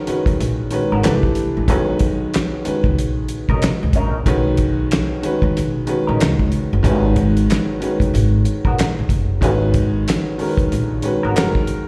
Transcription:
Already playing: D#3 G#3 C#4 F#4 A#4 B4
0.07 D#3 G#3 C#4 F#4 B4, muted upright bass stroke, closed hi-hat
0.26 B1, kick, closed hi-hat
0.40 A#1, closed hi-hat
0.71 D#3 G#3 C#4 F#4 B4, closed hi-hat
0.92 G#1 B3 F#4 A#4
1.03 C2 E3 A3 D4 G4 B4, snare, clap, closed hi-hat
1.23 kick
1.35 closed hi-hat
1.57 A1
1.68 B1 D#3 G#3 C#4 F#4 B4, kick, closed hi-hat
1.99 kick, closed hi-hat
2.34 snare, clap, closed hi-hat
2.65 D#3 G#3 C#4 F#4 B4, muted upright bass stroke, closed hi-hat
2.84 C#2, kick
2.99 A#1, closed hi-hat
3.28 closed hi-hat
3.49 B1 C#4 D#4 A#4, kick
3.62 snare, clap, closed hi-hat
3.83 C#2
3.93 A#1 C#4 D#4, kick, closed hi-hat
3.97 A#4
4.26 B1 D#3 G#3 C#4 F#4 B4, kick, closed hi-hat
4.57 kick, closed hi-hat
4.91 snare, clap, closed hi-hat
5.23 D#3 G#3 C#4 F#4 B4, muted upright bass stroke, closed hi-hat
5.42 D#2, kick
5.57 B1, closed hi-hat
5.87 D#3 G#3 C#4 F#4 B4, closed hi-hat
6.07 A#1 C#4 D#4 A#4
6.20 C#2, snare, clap, closed hi-hat
6.39 kick
6.52 closed hi-hat
6.73 F#1
6.83 G#1 D#3 G#3 C#4 F#4 B4, kick, closed hi-hat
7.16 kick, closed hi-hat
7.37 closed hi-hat
7.50 snare, clap, closed hi-hat
7.80 D#3 G#3 C#4 F#4 B4, muted upright bass stroke, closed hi-hat
8.00 B1, kick, closed hi-hat
8.14 G#1, closed hi-hat
8.45 closed hi-hat
8.65 A#1 B3 F#4 A#4, kick
8.79 snare, clap, closed hi-hat
8.99 B1
9.09 F#1, kick, closed hi-hat
9.41 G#1 D#3 G#3 C#4 F#4 B4, kick, closed hi-hat
9.74 kick, closed hi-hat
10.08 snare, clap, closed hi-hat
10.38 D#3 G#3 C#4 F#4 A#4, muted upright bass stroke, open hi-hat
10.48 B4
10.58 B1, kick, closed hi-hat
10.72 A#1, closed hi-hat
11.02 D#3 G#3 C#4 F#4 B4, closed hi-hat
11.23 G#1 B3 F#4 A#4
11.35 F#1 D#3 G#3 C#4 F#4 A#4, snare, clap, closed hi-hat
11.55 kick
11.67 closed hi-hat

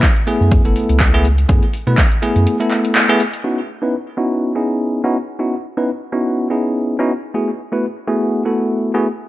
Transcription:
0.02 kick, clap, closed hi-hat
0.16 closed hi-hat
0.27 A3 B3 E4 G#4, open hi-hat
0.41 F#2
0.52 kick, closed hi-hat
0.65 F#1 A3 B3 E4 A4, closed hi-hat
0.76 open hi-hat
0.89 C#2, closed hi-hat
1.00 kick, clap, closed hi-hat
1.14 A3 B3 E4 G#4, closed hi-hat
1.25 open hi-hat
1.38 closed hi-hat
1.49 F#2 A3 B3 E4 G#4, kick, closed hi-hat
1.63 closed hi-hat
1.74 open hi-hat
1.87 B2 A3 B3 E4 B4, closed hi-hat
1.98 kick, clap, closed hi-hat
2.12 closed hi-hat
2.22 A3 B3 E4 G#4, open hi-hat
2.36 F#2, closed hi-hat
2.47 closed hi-hat
2.60 A3 B3 E4 A4, closed hi-hat
2.71 clap, open hi-hat
2.85 closed hi-hat
2.95 clap, closed hi-hat
3.09 A3 B3 E4 G#4, closed hi-hat
3.20 open hi-hat
3.34 closed hi-hat
3.44 B3 C#4 D#4 E4 F#4
3.82 B3 C#4 D#4 E4 B4
4.17 B3 C#4 D#4 E4 F#4
4.55 B3 C#4 D#4 E4 G#4
5.04 B3 C#4 D#4 E4 F#4
5.39 B3 C#4 D#4 E4 F#4
5.77 B3 C#4 D#4 E4 B4
6.12 B3 C#4 D#4 E4 F#4
6.50 B3 C#4 D#4 E4 G#4
6.99 B3 C#4 D#4 E4 F#4
7.34 A3 B3 E4 F#4 G#4
7.72 A3 B3 E4 F#4 B4
8.07 A3 B3 E4 F#4 G#4
8.45 A3 B3 E4 F#4 A4
8.94 A3 B3 E4 F#4 G#4

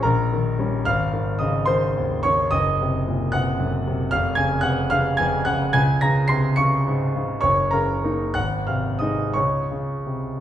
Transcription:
0.03 A#1 A#4 A#5
0.33 D#3
0.59 G3 C#4
0.85 G#1 F5 F6
1.13 D#3
1.39 C#3 D#5 D#6
1.66 D#3 C5 C6
1.97 D#2
2.23 D#3 C#5 C#6
2.51 F#1 D#5 D#6
2.82 C3
3.08 A#2
3.32 C3 F#5 F#6
3.59 F#2
3.87 C3
4.11 F1 F5 F6
4.35 C#3 G#5 G#6
4.61 C3 F#5 F#6
4.90 C#3 F5 F6
5.17 F2 G#5 G#6
5.45 C#3 F#5 F#6
5.73 C#2 G#5 G#6
6.01 C#3 A#5 A#6
6.28 C3 C6 C7
6.56 C#3 C#6 C#7
6.87 G#2
7.16 C#3
7.41 F#1 C#5 C#6
7.71 C#3 A#4 A#5
8.04 A#3 D#4
8.34 G#1 F#5 F#6
8.67 C3 F5 F6
8.99 G#3 D#4 D#5 D#6
9.33 C#2 C#5 C#6
9.71 C#3
10.07 C3

